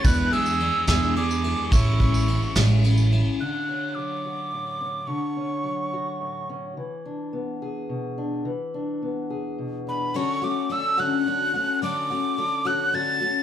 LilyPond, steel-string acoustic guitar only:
\new Staff \with { instrumentName = "Steel-string acoustic guitar" } { \time 6/8 \key d \lydian \tempo 4. = 71 << { r2. | r2. | r8 cis'4 fis'4 cis'8 | r8 cis'4 fis'4 cis'8 |
r8 d'4 gis'4 d'8 | r8 d'4 gis'4 d'8 | r2. | r2. | } \\ { r2. | r2. | d4 fis4 a,4 | d4 fis4 a,4 |
e4 b4 b,4 | e4 b4 b,4 | r2. | r2. | } >> }